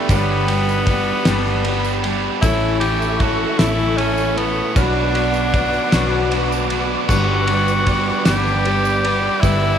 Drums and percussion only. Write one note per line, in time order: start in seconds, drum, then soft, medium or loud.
0.09 kick loud
0.09 ride loud
0.09 tambourine medium
0.48 ride medium
0.48 tambourine soft
0.69 tambourine medium
0.87 kick medium
0.87 ride medium
0.87 tambourine soft
1.25 snare loud
1.25 ride loud
1.25 tambourine medium
1.47 tambourine soft
1.65 ride medium
1.84 tambourine medium
2.04 ride medium
2.43 kick loud
2.43 ride loud
2.43 tambourine medium
2.81 ride medium
2.81 tambourine soft
3.02 tambourine medium
3.20 kick medium
3.20 ride medium
3.20 tambourine soft
3.59 snare loud
3.59 ride medium
3.59 tambourine medium
3.79 tambourine soft
3.98 ride medium
4.18 tambourine medium
4.38 ride medium
4.76 kick loud
4.76 ride medium
4.76 tambourine medium
5.15 ride medium
5.34 tambourine medium
5.54 kick medium
5.54 ride medium
5.54 tambourine soft
5.74 tambourine soft
5.92 snare loud
5.92 ride medium
5.92 tambourine medium
6.32 ride medium
6.52 tambourine medium
6.70 ride medium
7.09 kick loud
7.09 crash loud
7.09 tambourine medium
7.48 ride medium
7.48 tambourine soft
7.68 tambourine medium
7.87 kick medium
7.87 ride medium
7.87 tambourine soft
8.25 snare loud
8.25 ride loud
8.25 tambourine medium
8.47 tambourine soft
8.65 ride medium
8.85 tambourine medium
9.05 ride medium
9.43 kick loud
9.43 ride medium
9.43 tambourine medium